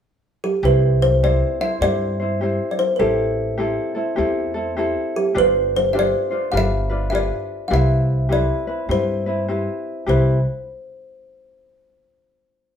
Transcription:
0.44 0.65 G4 medium
0.63 1.40 C2 medium
0.63 1.24 C4 medium
0.63 1.24 E4 medium
0.63 1.23 G4 medium
0.63 1.03 B4 medium
0.63 1.25 C5 medium
1.02 1.24 C5 medium
1.23 1.60 C4 medium
1.23 1.60 E4 medium
1.23 1.60 G4 medium
1.23 1.60 C5 medium
1.23 1.62 D5 medium
1.61 1.81 C4 soft
1.61 1.82 E4 soft
1.61 1.82 C5 soft
1.61 1.83 E5 medium
1.81 2.58 G2 medium
1.81 2.19 C4 soft
1.81 2.20 E4 medium
1.81 2.19 G4 soft
1.81 2.18 C5 medium
1.81 2.70 D5 loud
2.20 2.41 C4 soft
2.20 2.42 E4 soft
2.20 2.41 C5 soft
2.41 2.99 C4 medium
2.41 2.99 E4 medium
2.41 2.99 G4 soft
2.41 3.00 C5 medium
2.71 2.79 D5 medium
2.79 2.95 C5 medium
2.96 3.76 A1 medium
2.96 3.58 C4 medium
2.96 3.59 E4 medium
2.96 3.57 G4 medium
2.96 3.92 A4 medium
2.96 3.00 B4 soft
3.00 3.59 A4 medium
3.58 3.95 C4 medium
3.58 3.95 E4 medium
3.58 3.95 G4 medium
3.58 3.93 A4 medium
3.95 4.16 C4 soft
3.95 4.17 E4 soft
3.95 4.17 A4 soft
4.16 4.95 E2 medium
4.16 4.55 C4 medium
4.16 4.55 E4 medium
4.16 4.54 G4 medium
4.16 4.53 A4 medium
4.54 4.76 C4 soft
4.54 4.77 E4 soft
4.54 4.76 A4 medium
4.77 5.35 C4 medium
4.77 5.35 E4 medium
4.77 5.34 G4 medium
4.77 5.36 A4 medium
5.16 5.37 G4 medium
5.34 6.12 G1 medium
5.34 5.93 D4 medium
5.34 5.94 F4 medium
5.34 5.93 G4 medium
5.34 5.75 B4 medium
5.34 5.95 C5 medium
5.76 5.83 C5 medium
5.93 6.31 D4 medium
5.93 6.30 F4 medium
5.93 6.31 G4 medium
5.93 6.30 C5 medium
5.93 5.96 E5 medium
5.99 6.52 D5 medium
6.31 6.51 D4 soft
6.31 6.52 F4 soft
6.31 6.53 C5 soft
6.52 7.30 G1 medium
6.52 6.90 D4 soft
6.52 6.89 F4 medium
6.52 6.90 G4 medium
6.52 6.88 B4 medium
6.52 6.55 F5 medium
6.57 7.09 E5 loud
6.90 7.11 D4 soft
6.90 7.11 F4 soft
6.90 7.12 B4 soft
7.10 7.70 D4 medium
7.10 7.71 F4 medium
7.10 7.70 G4 medium
7.10 7.71 B4 medium
7.10 7.14 E5 medium
7.15 7.69 D5 medium
7.68 8.48 C2 medium
7.68 8.29 C4 medium
7.68 8.31 E4 medium
7.68 8.28 G4 medium
7.68 8.31 B4 medium
7.68 7.72 F5 medium
7.74 8.33 E5 medium
8.29 8.67 C4 medium
8.29 8.67 E4 medium
8.29 8.67 G4 medium
8.29 8.66 B4 medium
8.29 8.92 D5 medium
8.67 8.88 C4 soft
8.67 8.89 E4 soft
8.67 8.89 B4 soft
8.89 9.65 G2 medium
8.89 9.26 C4 medium
8.89 9.26 E4 medium
8.89 9.26 G4 soft
8.89 9.25 B4 medium
8.89 9.45 C5 medium
9.26 9.47 C4 soft
9.26 9.48 E4 soft
9.26 9.48 B4 soft
9.48 10.07 C4 medium
9.48 10.08 E4 medium
9.48 10.06 G4 soft
9.48 10.09 B4 soft
10.06 10.42 C2 medium
10.06 10.37 C4 medium
10.06 10.38 E4 medium
10.06 10.37 G4 medium
10.06 10.38 B4 medium
10.06 10.43 C5 medium

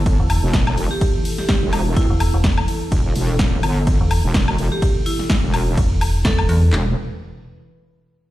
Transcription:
0.00 0.17 G1 medium
0.00 6.69 B2 medium
0.00 6.69 E3 medium
0.00 6.69 E4 medium
0.00 6.69 A4 medium
0.06 kick loud
0.06 ride medium
0.19 0.41 E1 loud
0.30 open hi-hat loud
0.30 high woodblock medium
0.43 0.65 E1 loud
0.53 kick loud
0.53 snare loud
0.53 ride medium
0.67 0.76 E1 loud
0.67 high woodblock medium
0.78 0.89 E1 loud
0.78 open hi-hat loud
0.91 1.12 G4 medium
1.01 kick loud
1.01 ride medium
1.25 open hi-hat loud
1.38 1.45 G4 medium
1.38 snare soft
1.49 1.57 G4 medium
1.49 kick loud
1.49 snare loud
1.49 ride medium
1.62 1.95 E1 loud
1.73 open hi-hat medium
1.73 high woodblock medium
1.96 2.08 D2 loud
1.96 2.34 E4 medium
1.96 kick loud
1.96 ride medium
2.10 2.32 E1 loud
2.20 open hi-hat loud
2.20 high woodblock medium
2.34 2.66 E1 medium
2.44 kick loud
2.44 snare loud
2.44 ride medium
2.58 high woodblock medium
2.68 open hi-hat medium
2.92 3.14 E1 loud
2.92 kick loud
2.92 ride medium
3.16 3.62 E1 loud
3.16 open hi-hat loud
3.39 kick loud
3.39 snare loud
3.39 ride medium
3.63 3.98 G1 loud
3.63 open hi-hat medium
3.63 high woodblock medium
3.87 kick loud
3.87 ride medium
4.01 4.22 E1 loud
4.11 open hi-hat loud
4.11 high woodblock medium
4.24 4.46 E1 loud
4.34 kick loud
4.34 snare loud
4.34 ride medium
4.48 4.57 E1 loud
4.48 high woodblock medium
4.58 4.70 E1 loud
4.58 open hi-hat medium
4.72 4.93 G4 medium
4.82 kick loud
4.82 ride medium
5.06 5.27 E4 medium
5.06 open hi-hat loud
5.19 snare soft
5.30 kick loud
5.30 snare loud
5.30 ride medium
5.43 5.76 E1 loud
5.54 open hi-hat medium
5.54 high woodblock medium
5.77 6.23 E1 loud
5.77 kick loud
5.77 ride medium
6.01 open hi-hat loud
6.01 high woodblock medium
6.25 6.47 E1 loud
6.25 6.73 A4 loud
6.25 kick loud
6.25 snare loud
6.25 ride medium
6.39 high woodblock medium
6.49 6.71 E2 loud
6.49 open hi-hat medium
6.73 6.95 E1 loud
6.73 6.95 B2 medium
6.73 6.95 E3 medium
6.73 6.95 E4 medium
6.73 6.95 B4 medium
6.73 snare loud
6.73 clap medium

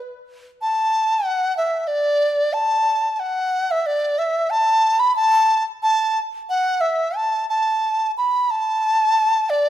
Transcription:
0.62 1.28 A5 medium
1.26 1.57 F#5 medium
1.57 1.89 E5 medium
1.87 2.55 D5 medium
2.53 3.16 A5 medium
3.16 3.73 F#5 medium
3.16 3.21 A5 medium
3.71 3.88 E5 medium
3.86 4.20 D5 medium
4.18 4.52 E5 medium
4.50 5.01 A5 medium
4.99 5.15 B5 medium
5.16 5.64 A5 loud
5.83 6.20 A5 loud
6.50 6.82 F#5 medium
6.81 7.17 E5 medium
7.16 7.49 A5 medium
7.49 8.12 A5 medium
8.18 8.52 B5 medium
8.51 9.51 A5 medium
9.50 9.69 D5 medium

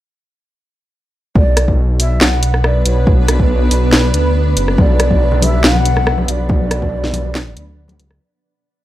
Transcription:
1.35 2.20 B1 loud
1.35 8.17 B3 medium
1.35 8.17 D4 medium
1.35 8.17 B4 medium
1.35 1.75 D5 medium
1.35 kick loud
1.57 cross-stick medium
1.57 closed hi-hat medium
1.68 kick medium
2.00 2.23 E5 loud
2.00 open hi-hat loud
2.21 2.84 B1 medium
2.21 2.66 F#5 loud
2.21 snare loud
2.21 clap medium
2.43 closed hi-hat medium
2.54 cross-stick soft
2.64 2.86 D5 loud
2.64 cross-stick medium
2.86 3.70 B1 loud
2.86 3.26 C#5 medium
2.86 closed hi-hat medium
3.07 kick loud
3.28 cross-stick medium
3.28 closed hi-hat medium
3.40 kick medium
3.71 4.12 B1 loud
3.71 open hi-hat medium
3.93 snare loud
3.93 clap medium
4.14 4.55 D2 loud
4.14 closed hi-hat medium
4.57 4.77 F#1 loud
4.57 closed hi-hat medium
4.68 cross-stick medium
4.78 5.62 B1 medium
4.78 5.45 D5 loud
4.78 kick loud
4.78 high conga loud
5.00 cross-stick medium
5.00 closed hi-hat medium
5.11 kick medium
5.11 high conga medium
5.32 low conga medium
5.42 5.66 E5 loud
5.42 open hi-hat medium
5.42 high conga loud
5.64 6.27 B1 loud
5.64 6.30 F#5 loud
5.64 snare loud
5.64 clap medium
5.75 high conga medium
5.86 closed hi-hat medium
5.96 cross-stick medium
5.96 low conga medium
6.07 cross-stick medium
6.18 high conga loud
6.28 7.12 B1 loud
6.28 8.00 D5 loud
6.28 closed hi-hat medium
6.49 kick loud
6.49 high conga loud
6.71 cross-stick medium
6.71 closed hi-hat medium
6.82 kick medium
6.82 high conga medium
7.04 snare soft
7.04 low conga loud
7.13 7.55 B1 loud
7.13 open hi-hat loud
7.13 high conga loud
7.35 snare loud
7.35 clap medium
7.46 high conga medium
7.57 7.98 D2 loud
7.57 closed hi-hat medium
7.88 closed hi-hat soft
7.88 high conga loud
7.99 8.19 C#2 medium
7.99 closed hi-hat medium
8.11 cross-stick medium

